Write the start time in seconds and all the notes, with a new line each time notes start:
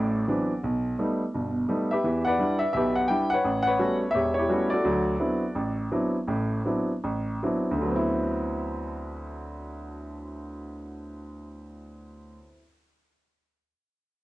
Already playing: A1 A2 F#4 A4 D5
0.28 E3 F#3 B3 C4 D4
0.64 B1
0.99 G3 A3 B3 D#4
1.34 G1 B2
1.69 G3 A3 B3 D#4
1.91 G4 B4 E5
2.04 E2 E3
2.25 B4 D5 F#5
2.39 G3 D4 E4
2.59 E5
2.73 B1 B2 G4 B4 E5
2.95 F#5
3.08 G3 D4 E4 G5
3.30 B4 F#5
3.34 C#5
3.45 A1
3.63 F#5
3.67 B4 C#5
3.79 G3 A3 B3 C#4 F#4
4.11 E1 E5
4.15 G4 C#5
4.34 C#5
4.39 E4 G4
4.49 G3 A3 B3 C#4 F#4
4.70 F#4 A4 D5
4.85 D2 F#3
5.19 F#3 B3 C4 D4 E4
5.55 A1
5.91 F#3 B3 C4 D4 E4
6.27 A1 A2
6.65 F#3 B3 C4 D4 E4
7.04 A1
7.43 F#3 B3 C4 D4 E4
7.71 D2
7.76 D3
7.82 F#3
7.86 B3
7.91 C4
7.96 E4